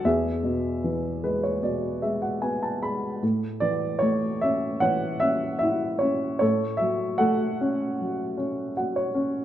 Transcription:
0.05 3.19 E2 medium
0.05 1.60 G#4 medium
0.05 1.59 E5 medium
0.43 1.61 B2 soft
0.84 2.39 E3 soft
1.24 2.01 G#3 soft
1.24 1.42 B4 medium
1.43 1.61 C#5 soft
1.62 3.19 B2 soft
1.62 2.00 D5 soft
2.02 2.81 G#3 soft
2.02 2.21 E5 soft
2.22 2.41 F#5 soft
2.42 3.20 B3 soft
2.42 2.61 G#5 soft
2.63 2.81 A5 soft
2.82 3.21 G#3 soft
2.82 3.20 B5 medium
3.23 6.37 A2 soft
3.60 4.80 E3 soft
3.60 3.99 D5 medium
3.99 5.58 A3 soft
3.99 4.42 C#5 medium
4.41 5.21 C#4 soft
4.41 4.79 E5 medium
4.80 6.36 E3 soft
4.80 5.97 C#5 medium
4.80 5.19 F#5 medium
5.20 6.01 C#4 soft
5.20 5.57 E5 medium
5.59 6.01 E5 medium
5.63 6.39 E4 soft
5.99 6.40 C#4 soft
5.99 6.37 C#5 medium
6.39 9.45 A2 medium
6.39 7.17 A4 medium
6.39 6.77 C#5 medium
6.77 7.99 F#3 medium
6.77 7.15 E5 medium
7.18 8.71 A3 soft
7.18 9.09 A4 medium
7.18 8.76 F#5 medium
7.61 8.36 C#4 medium
8.01 9.45 F#3 soft
8.37 9.13 C#4 soft
8.77 9.45 F#4 soft
8.77 8.94 F#5 soft
8.96 9.45 C#5 medium
9.15 9.45 C#4 medium

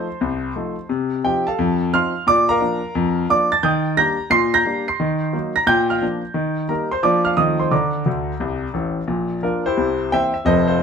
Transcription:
0.00 0.86 C5 medium
0.00 0.86 A5 medium
0.00 0.90 C6 medium
0.21 0.50 C2 medium
0.56 0.75 F3 soft
0.56 0.75 A3 medium
0.56 0.75 D#4 soft
0.89 1.19 C3 medium
1.24 1.43 F3 soft
1.24 1.43 C4 soft
1.24 1.44 D#4 soft
1.24 1.46 G4 medium
1.24 1.47 G5 medium
1.47 1.90 A4 medium
1.47 1.90 F5 medium
1.47 1.93 A5 medium
1.59 1.88 F2 loud
1.93 2.12 F3 medium
1.93 2.12 C4 soft
1.93 2.12 D#4 soft
1.93 2.25 F5 medium
1.93 2.26 C6 medium
1.93 2.27 F6 loud
2.27 2.56 A#2 medium
2.27 2.49 D5 medium
2.27 2.50 D6 loud
2.49 3.26 A#4 medium
2.49 3.26 F5 medium
2.49 3.29 A#5 loud
2.60 2.79 F3 soft
2.60 2.80 A#3 soft
2.60 2.80 D4 medium
2.95 3.24 F2 medium
3.30 3.48 F3 medium
3.30 3.49 A#3 medium
3.30 3.49 D4 medium
3.30 3.51 D5 medium
3.30 3.52 D6 loud
3.52 3.63 A5 medium
3.52 3.63 A6 loud
3.63 3.92 D#3 medium
3.63 3.95 G5 medium
3.63 3.96 D#6 medium
3.63 3.97 G6 medium
3.97 4.16 G3 medium
3.97 4.16 A#3 soft
3.97 4.16 D4 medium
3.97 4.30 A#5 medium
3.97 4.30 G6 medium
3.97 4.31 A#6 loud
4.30 4.60 A#2 medium
4.30 4.53 C6 medium
4.30 4.53 C7 loud
4.54 4.86 A#5 medium
4.54 4.86 G6 medium
4.54 4.88 A#6 loud
4.65 4.84 G3 soft
4.65 4.85 A#3 medium
4.65 4.85 D4 soft
4.88 5.53 C6 medium
4.88 5.56 C7 medium
5.00 5.29 D#3 medium
5.33 5.52 F#3 soft
5.33 5.52 A#3 soft
5.33 5.53 D#4 medium
5.56 5.67 A#5 medium
5.56 5.67 A#6 loud
5.67 5.96 A#2 loud
5.67 5.89 G5 medium
5.67 5.90 G6 loud
5.90 6.01 F5 medium
5.90 6.02 F6 medium
6.02 6.20 F3 soft
6.02 6.20 A#3 medium
6.02 6.21 D4 soft
6.34 6.64 D#3 medium
6.68 6.88 G3 soft
6.68 6.88 A#3 soft
6.68 6.88 D#4 medium
6.68 6.91 A#4 medium
6.68 6.92 A#5 medium
6.92 7.03 C5 medium
6.92 7.03 C6 medium
7.03 7.32 F3 medium
7.03 7.22 A#3 medium
7.03 7.23 D4 soft
7.03 7.25 D5 medium
7.03 7.26 D6 medium
7.25 7.37 F5 medium
7.25 7.37 F6 medium
7.37 7.66 D#3 medium
7.37 7.56 F3 soft
7.37 7.57 A3 soft
7.37 7.57 C4 soft
7.37 7.59 D#5 medium
7.37 7.60 D#6 medium
7.60 7.71 C5 medium
7.60 7.72 C6 medium
7.71 8.01 D3 medium
7.71 8.71 D5 medium
7.71 8.70 A#5 medium
7.71 8.74 D6 medium
8.06 8.32 D2 medium
8.06 8.31 D3 medium
8.40 8.66 C2 medium
8.40 8.65 C3 medium
8.74 9.00 A1 medium
8.74 9.00 A2 medium
9.07 9.37 A#1 medium
9.07 9.37 A#2 medium
9.43 9.61 F3 soft
9.43 9.61 A#3 soft
9.43 9.64 D4 medium
9.43 9.64 F4 medium
9.43 9.65 A#4 medium
9.66 10.08 E4 medium
9.66 10.08 G4 medium
9.66 10.11 C5 medium
9.77 10.06 C2 medium
9.77 10.06 C3 medium
10.12 10.30 E3 soft
10.12 10.30 A#3 soft
10.12 10.31 C4 soft
10.12 10.33 C5 medium
10.12 10.32 E5 medium
10.12 10.34 G5 loud
10.34 10.45 E5 medium
10.45 10.74 F1 medium
10.45 10.74 F2 medium
10.45 10.67 A4 medium
10.45 10.66 C5 medium
10.45 10.67 D#5 loud
10.68 10.83 F4 medium
10.68 10.83 A4 medium
10.68 10.83 C5 medium
10.79 10.83 F3 soft
10.79 10.83 A3 soft
10.79 10.83 D#4 medium

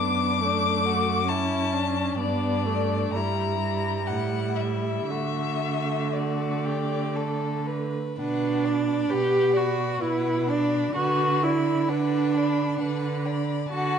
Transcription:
0.00 2.14 F#2 soft
0.00 0.42 B3 soft
0.00 0.41 D4 soft
0.00 1.30 D6 medium
0.41 1.27 A3 soft
0.41 0.87 D4 soft
0.86 1.32 F#4 soft
1.28 2.19 C#4 soft
1.28 1.76 E4 medium
1.28 2.18 A5 medium
1.74 2.19 D4 soft
2.17 3.12 G2 soft
2.17 2.67 B3 soft
2.17 3.17 D4 soft
2.17 3.13 D5 medium
2.65 3.16 A3 soft
3.14 4.10 G2 soft
3.14 3.61 G3 soft
3.14 4.08 E4 soft
3.14 4.08 A#5 medium
3.61 5.11 G3 soft
4.07 5.09 A2 soft
4.07 5.12 E4 soft
4.07 4.58 F#5 medium
4.56 5.07 E5 soft
5.08 7.93 D3 soft
5.08 7.97 A3 soft
5.08 6.04 F#4 soft
5.08 6.14 E5 soft
6.13 6.66 F#4 soft
6.13 7.68 D5 soft
6.65 7.18 G4 soft
7.16 7.68 A4 soft
7.67 8.17 B4 soft
8.18 9.00 B2 soft
8.18 9.12 D4 medium
8.18 8.66 B4 soft
8.18 8.67 F#5 soft
8.65 9.12 D5 soft
8.65 9.13 B5 soft
9.10 9.91 B2 soft
9.10 9.58 G4 medium
9.10 9.55 B4 soft
9.10 9.59 F#5 soft
9.53 10.03 F#4 medium
9.53 10.00 D5 soft
9.53 10.02 B5 soft
10.01 10.84 B2 soft
10.01 10.48 E4 medium
10.01 10.51 B4 soft
10.01 10.50 F#5 soft
10.48 10.94 D4 medium
10.48 10.96 D5 soft
10.48 10.94 B5 soft
10.94 11.78 D3 medium
10.94 11.45 F#4 medium
10.94 11.46 B4 soft
10.94 11.45 F#5 soft
11.43 11.90 E4 medium
11.43 11.91 D5 soft
11.43 11.90 B5 soft
11.88 12.70 D3 soft
11.88 13.26 D4 medium
11.88 12.39 B4 soft
11.88 12.36 F#5 soft
12.34 12.81 D5 soft
12.34 12.79 B5 soft
12.80 13.60 D3 medium
12.80 13.28 B4 soft
12.80 13.27 F#5 soft
13.26 13.70 D5 soft
13.26 13.69 B5 soft
13.70 13.99 D3 soft
13.70 13.99 F#4 medium
13.70 13.99 A5 soft
13.75 13.99 F#5 soft

